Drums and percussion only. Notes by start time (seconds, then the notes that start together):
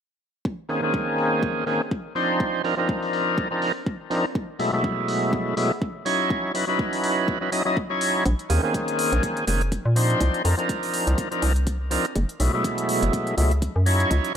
0.45 kick
0.69 open hi-hat
0.94 kick
1.18 open hi-hat
1.43 kick
1.67 open hi-hat
1.91 kick
2.16 open hi-hat
2.40 kick
2.65 open hi-hat
2.89 kick
3.03 open hi-hat
3.13 open hi-hat
3.38 kick
3.62 open hi-hat
3.86 kick
4.11 open hi-hat
4.35 kick
4.60 open hi-hat
4.84 kick
5.08 open hi-hat
5.33 kick
5.57 open hi-hat
5.82 kick
6.06 open hi-hat
6.30 kick
6.55 open hi-hat
6.79 kick
6.93 open hi-hat
7.04 open hi-hat
7.28 kick
7.52 open hi-hat
7.77 kick
8.01 open hi-hat
8.26 kick, closed hi-hat
8.39 closed hi-hat
8.50 open hi-hat
8.74 kick, closed hi-hat
8.88 closed hi-hat
8.99 open hi-hat
9.12 closed hi-hat
9.23 kick, closed hi-hat
9.37 closed hi-hat
9.47 open hi-hat
9.61 closed hi-hat
9.72 kick, closed hi-hat
9.96 open hi-hat
10.10 closed hi-hat
10.21 kick, closed hi-hat
10.34 closed hi-hat
10.45 open hi-hat
10.59 closed hi-hat
10.69 kick, closed hi-hat
10.83 open hi-hat
10.94 open hi-hat
11.07 closed hi-hat
11.18 kick, closed hi-hat
11.32 closed hi-hat
11.42 open hi-hat
11.56 closed hi-hat
11.67 kick, closed hi-hat
11.91 open hi-hat
12.05 closed hi-hat
12.16 kick, closed hi-hat
12.29 closed hi-hat
12.40 open hi-hat
12.64 kick, closed hi-hat
12.78 closed hi-hat
12.89 open hi-hat
13.03 closed hi-hat
13.13 kick, closed hi-hat
13.27 closed hi-hat
13.38 open hi-hat
13.51 closed hi-hat
13.62 kick, closed hi-hat
13.86 open hi-hat
14.00 closed hi-hat
14.11 kick, closed hi-hat
14.24 closed hi-hat